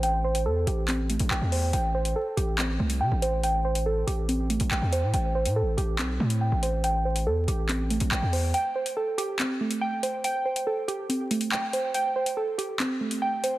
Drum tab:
HH |x--x--x-x-xx--o-|x--x--x-x--x--x-|x--x--x-x-xx--x-|x--x--x-x--x--x-|
CP |--------x---x---|--------x-------|------------x---|--------x-------|

HH |x--x--x-x-xx--o-|x--x--x-x--x--x-|x--x--x-x-xx--x-|x--x--x-x--x--x-|
CP |--------x---x---|--------x-------|------------x---|--------x-------|